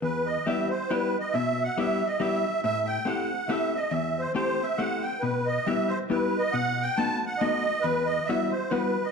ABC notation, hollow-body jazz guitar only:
X:1
M:3/4
L:1/8
Q:"Swing" 1/4=138
K:Em
V:1 name="Hollow-body jazz guitar"
E,,2 [G,B,EG] z [G,B,EG] z | B,,2 [G,B,EG] z [G,B,EG] z | A,,2 [A,CEG] z [A,CEG] z | E,,2 [A,CEG] z [A,CEG] z |
B,,2 [G,B,EG] z [G,B,EG] z | B,,2 [A,B,^DF] z [A,B,DF] z | E,,2 [G,B,EF] z [G,B,EF] z |]